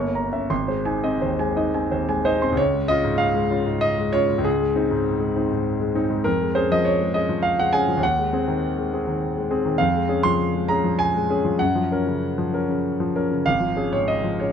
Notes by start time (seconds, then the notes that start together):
Already playing: G1 C#6
0.00 A#3 C#5
0.15 A#5
0.32 C#4 E5
0.50 G#1 C6
0.68 G#3 C5
0.85 D#4 G#5
1.04 C4 D#5
1.22 D#2 C5
1.39 G#3 G#5
1.57 D#4 D#5
1.74 C4 G#5
1.91 D#2 C5
2.09 G#3 G#5
2.25 D#4 C5 D#5
2.42 C4 C6
2.52 C#2
2.57 C#5
2.74 G#3
2.88 C#4 F4 D#5
3.04 G#2
3.18 F5
3.35 G#3
3.50 C#4 F4
3.66 G#2
3.81 D#5
3.98 G#3
4.13 C#4 F4 C#5
4.29 G#2
4.38 C#2
4.45 G#4
4.60 G#3
4.76 C4 D#4
4.91 G#2
5.20 G#3
5.36 C4 D#4
5.51 G#2
5.80 G#3
5.95 C4 D#4
6.10 G#2
6.24 F2 A#4
6.41 G#3
6.55 C#4 G#4 C5
6.71 F3 D#5
6.85 C#5
7.01 G#3
7.14 C#4 G#4 D#5
7.29 F3
7.43 F5
7.59 G#3 F#5
7.73 C#4 G#4 G#5
7.88 F3
7.97 D#2
8.03 F#5
8.18 G#3
8.33 C4 G#4
8.48 D#3
8.78 G#3
8.93 C4 G#4
9.07 D#3
9.37 G#3
9.51 C4 G#4
9.65 D#3
9.78 F2 F5
9.94 G#3
10.09 C#4 G#4
10.23 F3 C6
10.54 G#3
10.69 C#4 G#4 A#5
10.84 F3
10.99 G#5
11.15 G#3
11.30 C#4 G#4
11.45 F3
11.59 F#2 F#5
11.75 F3
11.92 C#4 A#4
12.07 C#3
12.38 F3
12.53 C#4 A#4
12.69 C#3
13.00 F3
13.16 C#4 A#4
13.31 C#3
13.46 G#1 F5
13.60 F3
13.76 C#4 G#4
13.92 G#2 C#5
14.08 D#5
14.24 F3
14.40 C#4 G#4 C#5